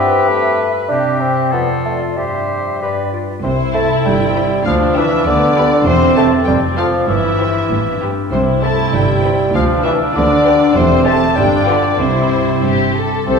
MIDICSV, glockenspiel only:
0, 0, Header, 1, 2, 480
1, 0, Start_track
1, 0, Key_signature, 0, "major"
1, 0, Tempo, 614125
1, 694, Time_signature, 2, 2, 24, 8
1, 1182, Tempo, 640342
1, 2622, Tempo, 610998
1, 8862, Tempo, 630915
1, 10396, End_track
2, 0, Start_track
2, 0, Title_t, "Glockenspiel"
2, 0, Program_c, 0, 9
2, 2623, Note_on_c, 0, 84, 49
2, 2849, Note_off_c, 0, 84, 0
2, 2869, Note_on_c, 0, 93, 59
2, 3092, Note_off_c, 0, 93, 0
2, 3116, Note_on_c, 0, 91, 46
2, 3560, Note_off_c, 0, 91, 0
2, 3585, Note_on_c, 0, 89, 69
2, 3809, Note_off_c, 0, 89, 0
2, 3829, Note_on_c, 0, 88, 64
2, 4050, Note_off_c, 0, 88, 0
2, 4072, Note_on_c, 0, 86, 66
2, 4508, Note_off_c, 0, 86, 0
2, 4540, Note_on_c, 0, 84, 68
2, 4757, Note_off_c, 0, 84, 0
2, 4773, Note_on_c, 0, 93, 72
2, 4993, Note_off_c, 0, 93, 0
2, 5013, Note_on_c, 0, 91, 55
2, 5233, Note_off_c, 0, 91, 0
2, 5247, Note_on_c, 0, 89, 57
2, 5473, Note_off_c, 0, 89, 0
2, 5493, Note_on_c, 0, 88, 51
2, 6192, Note_off_c, 0, 88, 0
2, 6469, Note_on_c, 0, 84, 52
2, 6692, Note_off_c, 0, 84, 0
2, 6712, Note_on_c, 0, 93, 57
2, 6935, Note_off_c, 0, 93, 0
2, 6952, Note_on_c, 0, 91, 47
2, 7399, Note_off_c, 0, 91, 0
2, 7435, Note_on_c, 0, 89, 59
2, 7654, Note_off_c, 0, 89, 0
2, 7679, Note_on_c, 0, 88, 62
2, 7894, Note_off_c, 0, 88, 0
2, 7905, Note_on_c, 0, 86, 63
2, 8349, Note_off_c, 0, 86, 0
2, 8378, Note_on_c, 0, 84, 78
2, 8601, Note_off_c, 0, 84, 0
2, 8609, Note_on_c, 0, 93, 74
2, 8837, Note_off_c, 0, 93, 0
2, 8845, Note_on_c, 0, 91, 62
2, 9071, Note_off_c, 0, 91, 0
2, 9089, Note_on_c, 0, 86, 68
2, 9315, Note_off_c, 0, 86, 0
2, 9330, Note_on_c, 0, 84, 55
2, 10028, Note_off_c, 0, 84, 0
2, 10297, Note_on_c, 0, 84, 57
2, 10396, Note_off_c, 0, 84, 0
2, 10396, End_track
0, 0, End_of_file